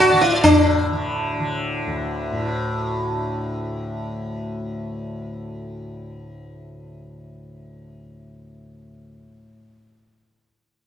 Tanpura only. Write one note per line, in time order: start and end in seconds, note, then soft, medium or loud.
0.00 1.86 D2 medium
0.00 0.45 A2 medium
0.00 0.12 D3 medium
0.12 0.92 D3 medium
0.45 2.32 A2 medium
0.92 1.40 D3 medium
1.40 8.55 D3 medium
1.87 9.02 D2 medium
2.32 9.47 A2 medium